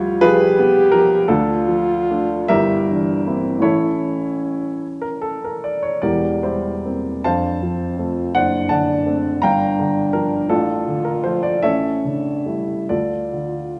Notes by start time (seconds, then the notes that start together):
Already playing: D2 F3 G3 F4 C#5
0.21 F3 F4 G#4 B4
0.25 G4
0.59 B3
0.92 F3 A#4
1.28 D2 D4 F4 A4
1.68 F3
2.10 A3 D4
2.48 G1 E4 G4 A#4 E5
2.90 E3 D4
3.27 A#3 C4 E4
3.58 A1 E3 A3 C#5
3.62 C#4 E4 A4
5.02 A#4
5.22 A4
5.44 A#4
5.64 D5
5.83 C#5
6.02 E1 E2 G4 A#4 D5
6.43 G3 E4 G4 C5
6.85 A#3 C4
7.23 F2 D4 C5 F5 A5
7.62 F3 C4
7.98 A3 C4 F4
8.35 F#1 D4 C5 D5 F#5
8.69 D3 D5 F#5 A5
9.06 A3 C4
9.42 G1 D4 F5 G5 A#5
9.79 D3
10.13 F3 D4 A#4
10.49 A1 D4 F4 A4
10.87 D3
11.05 A#4
11.24 F3 A3 C5
11.43 D5
11.62 A1 C#4 A4 C#5 E5
12.05 C#3 D4
12.46 G3 A3 E4
12.89 D2 F4 A4 D5
13.33 D3
13.77 E3